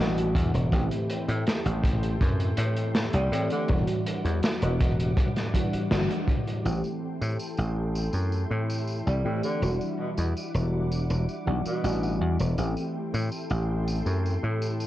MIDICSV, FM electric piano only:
0, 0, Header, 1, 2, 480
1, 0, Start_track
1, 0, Tempo, 740741
1, 472, Time_signature, 4, 2, 24, 8
1, 9634, End_track
2, 0, Start_track
2, 0, Title_t, "FM electric piano"
2, 0, Program_c, 0, 5
2, 0, Control_c, 0, 64, 127
2, 0, Note_on_c, 0, 52, 88
2, 0, Note_on_c, 0, 55, 78
2, 0, Note_on_c, 0, 62, 79
2, 0, Note_on_c, 0, 66, 97
2, 440, Note_off_c, 0, 52, 0
2, 441, Note_off_c, 0, 55, 0
2, 443, Note_off_c, 0, 62, 0
2, 445, Note_off_c, 0, 66, 0
2, 461, Note_on_c, 0, 52, 80
2, 466, Note_on_c, 0, 57, 72
2, 473, Note_on_c, 0, 60, 72
2, 479, Note_on_c, 0, 67, 88
2, 482, Control_c, 0, 64, 0
2, 606, Control_c, 0, 64, 127
2, 2118, Note_off_c, 0, 52, 0
2, 2121, Note_off_c, 0, 57, 0
2, 2124, Note_off_c, 0, 60, 0
2, 2128, Note_off_c, 0, 67, 0
2, 2149, Note_on_c, 0, 52, 78
2, 2152, Note_on_c, 0, 57, 71
2, 2155, Note_on_c, 0, 60, 71
2, 2158, Note_on_c, 0, 67, 86
2, 2362, Note_off_c, 0, 52, 0
2, 2364, Note_off_c, 0, 57, 0
2, 2366, Note_off_c, 0, 60, 0
2, 2367, Note_off_c, 0, 67, 0
2, 2383, Note_on_c, 0, 52, 84
2, 2390, Note_on_c, 0, 55, 81
2, 2395, Note_on_c, 0, 62, 77
2, 2402, Control_c, 0, 64, 0
2, 2403, Note_on_c, 0, 66, 97
2, 2522, Control_c, 0, 64, 127
2, 3559, Note_off_c, 0, 52, 0
2, 3563, Note_off_c, 0, 55, 0
2, 3565, Note_off_c, 0, 62, 0
2, 3569, Note_off_c, 0, 66, 0
2, 3588, Note_on_c, 0, 52, 85
2, 3589, Note_on_c, 0, 55, 82
2, 3594, Note_on_c, 0, 62, 78
2, 3597, Note_on_c, 0, 66, 96
2, 3802, Note_off_c, 0, 52, 0
2, 3802, Note_off_c, 0, 55, 0
2, 3805, Note_off_c, 0, 62, 0
2, 3806, Note_off_c, 0, 66, 0
2, 3827, Note_on_c, 0, 52, 89
2, 3831, Note_on_c, 0, 55, 82
2, 3833, Note_on_c, 0, 62, 82
2, 3837, Note_on_c, 0, 66, 100
2, 4281, Note_off_c, 0, 52, 0
2, 4283, Note_off_c, 0, 55, 0
2, 4284, Note_off_c, 0, 62, 0
2, 4286, Note_off_c, 0, 66, 0
2, 4302, Note_on_c, 0, 52, 74
2, 4310, Note_on_c, 0, 57, 66
2, 4316, Note_on_c, 0, 60, 67
2, 4321, Control_c, 0, 64, 0
2, 4322, Note_on_c, 0, 67, 81
2, 4442, Control_c, 0, 64, 127
2, 5959, Note_off_c, 0, 52, 0
2, 5963, Note_off_c, 0, 57, 0
2, 5966, Note_off_c, 0, 60, 0
2, 5969, Note_off_c, 0, 67, 0
2, 5984, Note_on_c, 0, 52, 73
2, 5988, Note_on_c, 0, 57, 67
2, 5991, Note_on_c, 0, 60, 68
2, 5993, Note_on_c, 0, 67, 83
2, 6200, Note_off_c, 0, 52, 0
2, 6202, Note_off_c, 0, 57, 0
2, 6203, Note_off_c, 0, 60, 0
2, 6204, Note_off_c, 0, 67, 0
2, 6220, Note_on_c, 0, 52, 80
2, 6225, Note_on_c, 0, 55, 73
2, 6232, Note_on_c, 0, 62, 72
2, 6238, Note_on_c, 0, 66, 90
2, 6241, Control_c, 0, 64, 0
2, 6341, Control_c, 0, 64, 127
2, 7398, Note_off_c, 0, 52, 0
2, 7400, Note_off_c, 0, 55, 0
2, 7404, Note_off_c, 0, 62, 0
2, 7407, Note_off_c, 0, 66, 0
2, 7423, Note_on_c, 0, 52, 81
2, 7427, Note_on_c, 0, 55, 74
2, 7431, Note_on_c, 0, 62, 75
2, 7433, Note_on_c, 0, 66, 93
2, 7639, Note_off_c, 0, 52, 0
2, 7642, Note_off_c, 0, 55, 0
2, 7644, Note_off_c, 0, 62, 0
2, 7644, Note_off_c, 0, 66, 0
2, 7665, Note_on_c, 0, 52, 83
2, 7669, Note_on_c, 0, 55, 74
2, 7672, Note_on_c, 0, 62, 77
2, 7674, Note_on_c, 0, 66, 89
2, 8120, Note_off_c, 0, 52, 0
2, 8122, Note_off_c, 0, 55, 0
2, 8124, Note_off_c, 0, 62, 0
2, 8125, Note_off_c, 0, 66, 0
2, 8142, Note_on_c, 0, 52, 75
2, 8147, Note_on_c, 0, 57, 68
2, 8154, Note_on_c, 0, 60, 68
2, 8159, Control_c, 0, 64, 0
2, 8160, Note_on_c, 0, 67, 84
2, 8274, Control_c, 0, 64, 127
2, 9634, Note_off_c, 0, 52, 0
2, 9634, Note_off_c, 0, 57, 0
2, 9634, Note_off_c, 0, 60, 0
2, 9634, Note_off_c, 0, 67, 0
2, 9634, End_track
0, 0, End_of_file